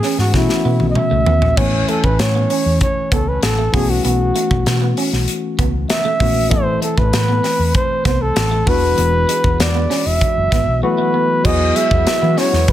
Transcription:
Already playing: E3 A3 B3 C#4 G#4 G#5
0.03 C#4, snare, open hi-hat
0.18 G#2 F#4, snare
0.32 E3 A3 B3 C#4 E4 F#4, kick, snare
0.49 snare
0.65 B2 B3
0.80 B1, high tom
0.90 D#5
0.95 E5, muted clean electric guitar stroke, mid tom
1.11 C#2 A3
1.26 D#2 B3, floor tom
1.42 A#1, floor tom
1.56 A1 E3 A3 B3 C#4 C#5 G#5, kick, crash
1.88 A3 A4, closed hi-hat
2.04 A1 B4, muted clean electric guitar stroke, kick
2.19 A2 C#5, muted clean electric guitar stroke, snare, closed hi-hat
2.35 B3
2.50 C#4, open hi-hat
2.66 E2
2.81 C#5, kick, closed hi-hat
3.12 C#2 B3 A4, kick, closed hi-hat
3.28 B4
3.43 A1 A4, muted clean electric guitar stroke, snare, closed hi-hat
3.59 A3
3.72 B1 E3 A3 B3 C#4 F#4 G#4, kick, open hi-hat
3.90 F#4
4.05 B1 B3 F#4, closed hi-hat
4.36 A3, closed hi-hat
4.51 B1, muted clean electric guitar stroke, kick
4.66 B2, muted clean electric guitar stroke, snare, closed hi-hat
4.82 B3
4.97 C#4, open hi-hat
5.13 B1, snare
5.28 closed hi-hat
5.59 C#2 B3, kick, closed hi-hat
5.90 E5, muted clean electric guitar stroke, snare, closed hi-hat
6.05 A3
6.20 A#1 E3 A3 B3 C#4 F#4, kick, open hi-hat
6.49 A1 E3 A3 B3 C4 A4 C5, kick, closed hi-hat
6.82 A3 A4, closed hi-hat
6.97 A1 B4, muted clean electric guitar stroke, kick
7.13 A2, muted clean electric guitar stroke, snare, closed hi-hat
7.28 B3
7.44 C4, snare, open hi-hat
7.59 E2
7.74 C5, kick, closed hi-hat
8.05 C2 B3 C5, kick, snare, closed hi-hat
8.22 A4
8.36 A1, muted clean electric guitar stroke, snare, closed hi-hat
8.51 A3
8.65 E1 E3 G3 B3 D4 F#4 B4, kick, open hi-hat
8.73 G#3
8.98 E1 B3, closed hi-hat
9.29 G#3, closed hi-hat
9.44 E1, muted clean electric guitar stroke, kick
9.60 E2 D5, muted clean electric guitar stroke, snare, closed hi-hat
9.75 B3
9.90 C#4, snare, open hi-hat
10.06 E1 E5
10.21 kick, closed hi-hat
10.37 F#1
10.52 G#1 B3, kick, snare, closed hi-hat
10.68 B1
10.82 E3 F#3 A3 B3 F#4 B4, muted clean electric guitar stroke
10.98 A3
11.14 B3
11.43 E2 F#3 G#3 B3 E4 F#4 G#4 D#5, kick, crash
11.76 G#3 E5, closed hi-hat
11.91 E2, muted clean electric guitar stroke, kick
12.07 muted fingered electric bass stroke, muted clean electric guitar stroke, snare, closed hi-hat
12.22 E3 B3
12.37 C#4 C#5, snare, open hi-hat
12.53 E2, snare
12.68 F#2, kick, closed hi-hat

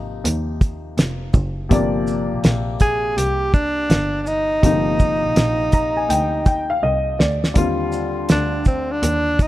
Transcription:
Already playing: G#1 C3 F3 A#3 D#4
0.25 D#2, closed hi-hat
0.61 kick, closed hi-hat, shaker
0.98 F1, snare, closed hi-hat
1.34 F#1, kick, shaker
1.69 G1 C3 F3 A#3 D5, kick, closed hi-hat
2.07 shaker
2.31 A#1
2.44 A#1, snare, closed hi-hat
2.80 G#4, kick, closed hi-hat, shaker
3.17 C2 G4, closed hi-hat
3.54 D4, kick, shaker
3.90 G1, snare, closed hi-hat
4.22 D4
4.26 D#4, shaker
4.62 G1 C3 F3 A#3 D#4, kick, closed hi-hat
5.00 kick, shaker
5.23 A#1
5.36 A#1, snare, closed hi-hat
5.72 A#5, kick, closed hi-hat, shaker
5.97 G#5
6.09 D2 G5, closed hi-hat
6.46 G5, kick, closed hi-hat, shaker
6.70 F5
6.83 C2 D#5
7.19 D2 D5, snare
7.44 snare
7.54 D#2 D3 G3 C4 F4, kick, closed hi-hat
7.92 shaker
8.29 D2 D4, snare, closed hi-hat
8.65 C4, kick, shaker
8.92 D4
9.03 D#2, closed hi-hat
9.39 D#4, kick, closed hi-hat, shaker

